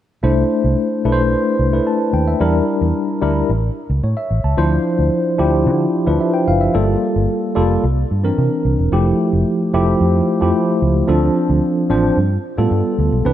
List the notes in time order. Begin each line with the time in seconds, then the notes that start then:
0.23 C2 A3 D4 E4 C5
0.64 C2
1.05 B1 A3 D4 E4 B4
1.12 C5
1.59 C2
1.73 A3 D4 E4 B4
1.87 A5
2.13 D#2 G5
2.28 E5
2.40 E2 G3 D4 E4 A#4
2.81 E2
3.22 D2 G3 D4 E4 A#4
3.49 A1
3.90 C#2
4.03 A2 C#5
4.17 E5
4.31 A1
4.44 C#2 A5
4.57 D2 F3 D4 E4 C5
4.99 D2
5.38 D2 F3 D4 E4 G4
5.66 D3
6.06 D2 F3 D4 E4 B4
6.21 E5
6.34 G5
6.48 F#1 F5
6.61 E5
6.74 G1 G3 A#3 F4 A4
7.16 G1
7.55 F1 G3 A#3 F4 A4
7.84 C2
8.11 G2
8.23 E3 C4 D4 A#4
8.38 C3
8.65 C2
8.78 E1
8.92 F1 F3 A3 E4 G4
9.33 F1
9.73 F1 F3 A3 E4 G4
10.01 F2
10.41 F2 F3 A3 E4 G4
10.82 C#2
11.08 D2 F3 C4 D4 A4
11.50 D2
11.90 A1 F3 C4 D4 C5
12.17 G2
12.57 A2 G3 B3 F4 A4
12.71 G2
12.99 D2
13.12 B1
13.25 C2 E3 C4 D4 B4